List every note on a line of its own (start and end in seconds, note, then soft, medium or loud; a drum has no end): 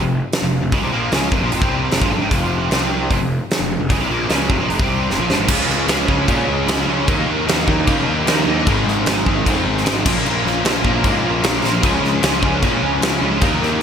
0.03 0.21 F1 medium
0.03 0.19 F2 medium
0.03 0.19 C3 medium
0.32 snare loud
0.32 open hi-hat soft
0.42 0.61 F1 medium
0.42 0.58 F2 medium
0.42 0.59 C3 medium
0.62 0.71 F1 medium
0.62 0.72 F2 soft
0.62 0.71 C3 medium
0.72 0.81 C#2 medium
0.72 0.81 C#3 medium
0.72 0.82 G#3 medium
0.72 kick medium
0.72 open hi-hat soft
0.82 0.91 C2 medium
0.82 0.91 C3 medium
0.82 0.91 G3 medium
0.92 1.11 A#1 medium
0.92 1.11 A#2 medium
0.92 1.11 F3 medium
0.92 1.12 A#3 loud
1.12 1.30 C#2 medium
1.12 1.31 C#3 medium
1.12 1.31 G#3 medium
1.12 1.31 C#4 loud
1.12 snare loud
1.12 open hi-hat soft
1.32 1.41 F1 medium
1.32 1.42 F2 medium
1.32 1.42 C3 medium
1.32 kick medium
1.42 1.51 A#1 medium
1.42 1.51 A#2 medium
1.42 1.52 F3 medium
1.52 1.61 F1 medium
1.52 1.61 F2 medium
1.52 1.61 C3 loud
1.52 open hi-hat soft
1.61 1.89 C2 medium
1.61 1.91 C3 medium
1.61 1.91 G3 medium
1.61 1.91 C4 medium
1.61 kick medium
1.91 2.01 F1 medium
1.91 2.01 F2 medium
1.91 2.01 C3 medium
1.91 snare medium
1.91 open hi-hat soft
2.01 2.10 A#1 medium
2.01 2.11 A#2 medium
2.01 2.11 F3 medium
2.01 kick loud
2.11 2.21 G1 medium
2.11 2.20 G2 medium
2.11 2.21 D3 loud
2.21 2.30 G#1 medium
2.21 2.30 G#2 medium
2.21 2.30 D#3 medium
2.31 2.68 F1 medium
2.31 2.70 F2 medium
2.31 2.69 C3 loud
2.31 2.71 F3 loud
2.31 kick medium
2.31 open hi-hat medium
2.70 3.07 C2 medium
2.70 3.09 C3 medium
2.70 3.10 G3 medium
2.70 3.10 C4 medium
2.70 snare loud
2.70 open hi-hat soft
3.10 3.20 F1 medium
3.10 3.19 F2 medium
3.10 3.19 C3 loud
3.10 kick medium
3.10 open hi-hat soft
3.20 3.39 F1 medium
3.20 3.36 F2 medium
3.20 3.36 C3 medium
3.50 snare loud
3.50 open hi-hat soft
3.60 3.79 F1 medium
3.60 3.76 F2 medium
3.60 3.76 C3 medium
3.80 3.89 F1 medium
3.80 3.90 F2 medium
3.80 3.89 C3 medium
3.89 3.99 C#2 medium
3.89 3.99 C#3 medium
3.89 3.99 G#3 medium
3.89 kick loud
3.89 open hi-hat soft
4.00 4.09 C2 medium
4.00 4.09 C3 medium
4.00 4.09 G3 medium
4.09 4.28 A#1 medium
4.09 4.29 A#2 medium
4.09 4.29 F3 medium
4.09 4.29 A#3 loud
4.29 4.48 C#2 medium
4.29 4.49 C#3 medium
4.29 4.49 G#3 medium
4.29 4.49 C#4 medium
4.29 snare medium
4.29 open hi-hat soft
4.48 4.59 F1 medium
4.48 4.58 F2 medium
4.48 4.58 C3 medium
4.48 kick medium
4.59 4.68 A#1 medium
4.59 4.68 A#2 medium
4.59 4.69 F3 medium
4.68 4.78 F1 medium
4.68 4.78 F2 medium
4.68 4.78 C3 medium
4.68 open hi-hat soft
4.79 5.07 C2 medium
4.79 5.08 C3 medium
4.79 5.08 G3 medium
4.79 5.09 C4 medium
4.79 kick medium
5.08 5.18 F1 medium
5.08 5.18 F2 medium
5.08 5.18 C3 medium
5.08 snare medium
5.18 5.27 A#1 medium
5.18 5.28 A#2 medium
5.18 5.29 F3 medium
5.28 5.38 G1 medium
5.28 5.38 G2 medium
5.28 5.39 D3 medium
5.28 snare medium
5.38 5.48 G#1 medium
5.38 5.48 G#2 medium
5.38 5.48 D#3 medium
5.48 5.66 C#2 medium
5.48 5.86 C#3 medium
5.48 5.87 G#3 loud
5.48 5.88 C#4 loud
5.48 6.28 F4 loud
5.48 kick loud
5.48 crash loud
5.48 crash medium
5.67 5.86 C#2 medium
5.67 snare soft
5.87 6.06 C#2 medium
5.87 6.06 C#3 medium
5.87 6.07 G#3 medium
5.87 6.07 C#4 medium
5.87 snare loud
5.87 crash medium
6.07 6.27 C#2 medium
6.07 6.25 C#3 medium
6.07 6.26 G#3 medium
6.07 6.26 C#4 medium
6.07 kick medium
6.27 6.46 A#2 medium
6.27 6.65 C#3 loud
6.27 6.65 G#3 loud
6.27 6.66 C#4 loud
6.27 7.07 F4 medium
6.27 kick medium
6.27 crash medium
6.47 6.66 C#2 medium
6.66 6.86 C#2 medium
6.66 6.86 C#3 medium
6.66 6.86 G#3 medium
6.66 6.86 C#4 medium
6.66 snare loud
6.66 crash medium
6.87 7.05 C#2 medium
6.87 7.06 C#3 medium
6.87 7.06 G#3 medium
6.87 7.06 C#4 medium
7.07 7.26 D#2 loud
7.07 7.45 D#3 loud
7.07 7.86 G3 medium
7.07 7.45 A#3 medium
7.07 7.47 D#4 loud
7.07 kick loud
7.07 crash medium
7.26 7.45 D#2 medium
7.46 7.65 D#2 medium
7.46 7.65 D#3 medium
7.46 7.66 A#3 medium
7.46 7.66 D#4 loud
7.46 snare loud
7.46 crash medium
7.66 7.86 D#2 medium
7.66 7.85 D#3 medium
7.66 7.85 A#3 medium
7.66 7.86 D#4 loud
7.66 kick medium
7.86 8.05 C#3 medium
7.86 8.25 D#3 medium
7.86 8.65 G3 medium
7.86 8.26 A#3 loud
7.86 8.26 D#4 loud
7.86 kick medium
7.86 crash medium
8.07 8.25 D#2 medium
8.26 8.45 D#2 medium
8.26 8.45 D#3 medium
8.26 8.46 A#3 medium
8.26 8.46 D#4 medium
8.26 snare loud
8.26 crash medium
8.46 8.64 D#2 medium
8.46 8.65 D#3 medium
8.46 8.65 A#3 loud
8.46 8.65 D#4 medium
8.66 8.85 G#1 medium
8.66 9.05 G#2 loud
8.66 9.05 D#3 loud
8.66 9.06 G#3 loud
8.66 9.45 C4 loud
8.66 9.45 D#4 loud
8.66 kick loud
8.66 crash medium
8.86 9.04 G#1 medium
8.86 snare soft
9.06 9.24 G#1 medium
9.06 9.25 G#2 medium
9.06 9.26 D#3 medium
9.06 9.26 G#3 loud
9.06 snare loud
9.06 crash medium
9.26 9.44 G#1 loud
9.26 9.44 G#2 medium
9.26 9.44 D#3 medium
9.26 9.45 G#3 loud
9.26 kick medium
9.45 9.64 F2 medium
9.45 9.83 G#2 loud
9.45 9.84 D#3 medium
9.45 9.84 G#3 loud
9.45 10.05 C4 medium
9.45 10.05 D#4 medium
9.45 kick medium
9.45 crash medium
9.66 9.84 G#1 medium
9.78 snare soft
9.84 10.04 G#1 medium
9.84 10.03 G#2 medium
9.84 10.04 D#3 medium
9.84 10.04 G#3 medium
9.84 snare loud
9.84 crash medium
10.05 10.24 A#1 medium
10.05 10.24 A#2 loud
10.05 10.25 F3 loud
10.05 10.24 A#3 loud
10.05 10.83 C#4 loud
10.05 kick loud
10.05 crash loud
10.25 10.43 A#1 medium
10.25 10.63 A#2 medium
10.25 10.65 F3 loud
10.25 10.64 A#3 loud
10.25 crash medium
10.46 10.63 A#1 medium
10.46 snare soft
10.65 10.83 A#1 medium
10.65 10.83 A#2 medium
10.65 10.85 F3 medium
10.65 10.84 A#3 medium
10.65 snare loud
10.65 crash medium
10.84 11.03 A#1 medium
10.84 11.02 A#2 medium
10.84 11.03 F3 medium
10.84 11.03 A#3 medium
10.84 11.62 C#4 medium
10.84 kick medium
11.03 11.22 G#2 medium
11.03 11.41 A#2 loud
11.03 11.42 F3 loud
11.03 11.42 A#3 loud
11.03 kick medium
11.03 crash medium
11.23 11.42 A#1 medium
11.43 11.62 A#1 medium
11.43 11.61 A#2 medium
11.43 11.62 F3 medium
11.43 11.62 A#3 medium
11.43 snare loud
11.43 crash medium
11.62 11.81 A#1 medium
11.62 11.81 A#2 medium
11.62 11.82 F3 medium
11.62 11.82 A#3 medium
11.62 snare medium
11.82 12.02 C#2 medium
11.82 12.21 C#3 loud
11.82 12.61 F3 medium
11.82 12.22 G#3 loud
11.82 12.23 C#4 loud
11.82 kick loud
11.82 crash medium
12.03 12.21 C#2 medium
12.03 snare soft
12.23 12.41 C#2 medium
12.23 12.41 C#3 medium
12.23 12.41 G#3 medium
12.23 12.42 C#4 loud
12.23 snare loud
12.23 crash medium
12.42 12.61 C#2 medium
12.42 12.62 C#3 medium
12.42 12.62 G#3 medium
12.42 12.62 C#4 medium
12.42 kick medium
12.63 12.81 A#2 medium
12.63 13.01 C#3 loud
12.63 13.41 F3 medium
12.63 13.01 G#3 loud
12.63 13.02 C#4 loud
12.63 kick medium
12.63 crash medium
12.82 13.01 C#2 medium
13.02 13.20 C#2 medium
13.02 13.21 C#3 medium
13.02 13.21 G#3 medium
13.02 13.22 C#4 medium
13.02 snare loud
13.02 crash medium
13.22 13.40 C#2 medium
13.22 13.41 C#3 medium
13.22 13.41 G#3 medium
13.22 13.41 C#4 medium
13.41 13.60 D#2 medium
13.41 13.81 D#3 loud
13.41 13.82 G3 medium
13.41 13.81 A#3 medium
13.41 13.82 D#4 loud
13.41 kick loud
13.41 crash medium
13.62 13.80 D#2 medium
13.62 snare soft